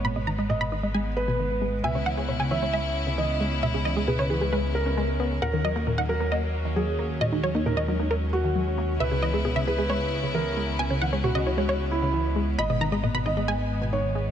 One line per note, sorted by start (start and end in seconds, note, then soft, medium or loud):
0.00 1.82 G#1 medium
0.00 5.38 G#3 medium
0.00 1.80 B3 medium
0.05 0.10 A#2 medium
0.05 0.13 B5 loud
0.16 0.24 B2 medium
0.16 0.24 D#5 medium
0.27 0.35 D#3 medium
0.27 0.36 A#5 medium
0.38 0.47 G#3 medium
0.38 0.47 D#5 medium
0.50 0.53 A#2 medium
0.50 1.08 D#5 medium
0.50 0.58 D#5 medium
0.61 0.69 B2 medium
0.61 0.69 B5 loud
0.72 0.77 D#3 medium
0.72 0.80 D#5 medium
0.83 0.89 G#3 medium
0.83 0.92 D#5 medium
0.94 1.03 G#3 medium
0.94 1.75 G#5 medium
1.17 1.75 B4 medium
1.28 1.36 B2 medium
1.39 1.42 D#3 medium
1.62 1.67 G#3 medium
1.84 5.40 C#2 medium
1.84 1.89 B2 medium
1.84 5.38 C#3 medium
1.84 5.39 B3 medium
1.84 10.75 C#4 medium
1.84 5.39 E4 medium
1.84 2.42 E5 medium
1.84 1.92 G#5 loud
1.95 2.03 C#3 medium
1.95 2.04 C#5 medium
2.06 2.14 E3 medium
2.06 2.15 F#5 medium
2.17 2.26 G#3 medium
2.17 2.26 C#5 medium
2.29 2.32 B2 medium
2.29 2.37 C#5 medium
2.40 2.48 C#3 medium
2.40 2.48 G#5 medium
2.51 2.56 E3 medium
2.51 2.60 C#5 medium
2.51 3.09 E5 medium
2.62 2.68 G#3 medium
2.62 2.71 C#5 medium
2.73 2.82 G#3 medium
2.73 3.54 E5 medium
3.07 3.15 C#3 medium
3.18 3.21 E3 medium
3.18 3.61 D#5 medium
3.40 3.46 G#3 medium
3.63 3.68 B2 medium
3.63 3.71 E5 loud
3.74 3.82 C#3 medium
3.74 3.83 G#4 medium
3.85 3.93 E3 medium
3.85 3.94 D#5 medium
3.96 4.05 G#3 medium
3.96 4.05 G#4 medium
4.08 4.11 B2 medium
4.08 4.16 G#4 medium
4.08 4.66 B4 medium
4.19 4.27 C#3 medium
4.19 4.27 C#5 medium
4.30 4.36 E3 medium
4.30 4.39 G#4 medium
4.41 4.47 G#3 medium
4.41 4.50 G#4 medium
4.53 4.61 G#3 medium
4.53 5.33 B4 medium
4.75 5.33 A#4 medium
4.86 4.94 C#4 medium
4.97 5.05 G#3 medium
5.20 5.28 B3 loud
5.42 8.98 D#2 medium
5.42 5.47 A#2 medium
5.42 8.97 F#3 medium
5.42 7.19 A#3 medium
5.42 6.00 A#4 loud
5.42 5.51 F#5 loud
5.53 5.61 D#3 medium
5.53 5.62 A#4 medium
5.64 5.73 F#3 medium
5.64 5.73 D#5 loud
5.76 5.84 A#3 medium
5.76 5.84 A#4 medium
5.87 5.90 A#2 medium
5.87 5.95 A#4 medium
5.98 6.06 D#3 medium
5.98 6.07 F#5 loud
6.09 6.15 F#3 medium
6.09 6.18 A#4 medium
6.09 6.67 A#4 medium
6.20 6.26 A#3 medium
6.20 6.29 A#4 medium
6.32 6.40 A#3 medium
6.32 7.12 D#5 medium
6.65 6.73 D#3 medium
6.76 6.80 F#3 medium
6.76 7.19 G#4 medium
6.99 7.04 A#3 medium
7.21 7.27 A#2 medium
7.21 14.31 G#3 medium
7.21 7.30 D#5 loud
7.32 7.40 D#3 medium
7.32 7.41 D#4 medium
7.43 7.52 F#3 medium
7.43 7.52 C#5 medium
7.55 7.63 A#3 medium
7.55 7.63 D#4 medium
7.66 7.69 A#2 medium
7.66 7.75 D#4 medium
7.66 8.24 A#4 medium
7.77 7.85 D#3 medium
7.77 7.86 D#5 loud
7.88 7.94 F#3 medium
7.88 7.97 D#4 medium
8.00 8.05 A#3 medium
8.00 8.08 D#4 medium
8.11 8.19 A#3 medium
8.11 8.91 A#4 medium
8.33 8.91 F#4 medium
8.44 8.52 D#3 medium
8.56 8.59 F#3 medium
8.78 8.83 A#3 medium
9.00 12.56 C#2 medium
9.00 9.06 B2 medium
9.00 12.55 C#3 medium
9.00 14.31 B3 medium
9.00 12.55 E4 medium
9.00 9.58 B4 medium
9.00 9.09 E5 loud
9.11 9.20 C#3 medium
9.11 9.20 G#4 medium
9.22 9.31 E3 medium
9.22 9.31 D#5 loud
9.34 9.42 G#3 medium
9.34 9.42 G#4 medium
9.45 9.48 B2 medium
9.45 9.53 G#4 medium
9.56 9.64 C#3 medium
9.56 9.65 E5 medium
9.67 9.73 E3 medium
9.67 9.76 G#4 medium
9.67 10.26 B4 medium
9.78 9.84 G#3 medium
9.78 9.87 G#4 medium
9.90 9.98 G#3 medium
9.90 10.70 C#5 medium
10.23 10.31 C#3 medium
10.34 10.38 E3 medium
10.34 10.77 A#4 medium
10.57 10.62 G#3 medium
10.79 10.85 B2 medium
10.79 12.57 C#4 medium
10.79 10.88 G#5 loud
10.90 10.99 C#3 medium
10.90 10.99 C#5 medium
11.02 11.10 E3 medium
11.02 11.10 F#5 medium
11.13 11.21 G#3 medium
11.13 11.21 C#5 medium
11.24 11.27 B2 medium
11.24 11.82 F#4 medium
11.24 11.32 C#5 medium
11.35 11.43 C#3 medium
11.35 11.44 D#5 medium
11.46 11.52 E3 medium
11.46 11.55 C#5 medium
11.58 11.63 G#3 medium
11.58 11.66 C#5 medium
11.69 11.77 G#3 medium
11.69 12.49 C#5 medium
11.91 12.49 E4 medium
12.02 12.11 C#3 medium
12.14 12.17 E3 medium
12.36 12.41 G#3 medium
12.58 14.31 G#1 medium
12.58 12.64 A#2 medium
12.58 13.17 D#5 medium
12.58 12.67 B5 loud
12.70 12.78 B2 medium
12.70 12.78 D#5 medium
12.81 12.89 D#3 medium
12.81 12.89 A#5 medium
12.92 13.00 G#3 medium
12.92 13.01 D#5 medium
13.03 13.07 A#2 medium
13.03 13.12 D#5 medium
13.14 13.23 B2 medium
13.14 13.23 B5 medium
13.26 13.31 D#3 medium
13.26 13.84 D#5 medium
13.26 13.34 D#5 medium
13.37 13.42 G#3 medium
13.37 13.45 D#5 medium
13.48 13.56 G#3 medium
13.48 14.29 G#5 medium
13.81 13.90 B2 medium
13.93 13.96 D#3 medium
13.93 14.31 C#5 medium
14.15 14.21 G#3 medium